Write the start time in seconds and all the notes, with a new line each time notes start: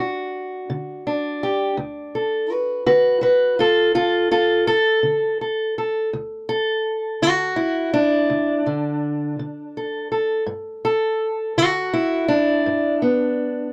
Already playing: G2 D4
0.00 F#4
0.70 D3
1.07 D4
1.43 G4
1.77 D2
2.15 A4
2.51 F#4 B4
2.86 D3 F#4 B4
3.21 F#4 B4
3.59 F4 A4
3.95 D2 F4 A4
4.31 F4 A4
4.67 A4
5.03 D3
5.41 A4
5.78 A4
6.13 D2
6.49 A4
7.22 D3 F#4
7.56 E4
7.94 D4
8.30 D2
8.66 D3
9.39 D3
9.77 A4
10.12 A4
10.46 G2
10.85 A4
11.58 D3 F#4
11.93 E4
12.28 D4
12.66 G2
13.02 B3